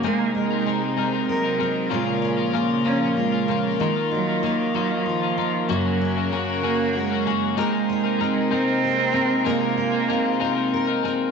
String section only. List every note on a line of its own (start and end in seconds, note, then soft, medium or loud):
0.00 1.89 C3 medium
0.00 1.89 G#3 medium
0.00 3.77 A#3 soft
0.00 1.89 D#4 medium
0.00 5.65 A#4 medium
1.91 3.79 C#3 medium
1.91 3.79 F3 medium
1.91 5.66 F4 medium
3.80 5.67 D#3 medium
3.80 7.54 A#3 medium
5.69 7.56 C#3 medium
5.69 7.56 F#3 medium
5.69 7.56 F#4 medium
5.69 7.55 A#4 medium
7.56 11.31 C3 medium
7.56 11.31 G#3 medium
7.56 11.31 A#3 medium
7.56 9.43 D#4 medium
7.56 11.31 A#4 medium
9.46 11.31 F4 medium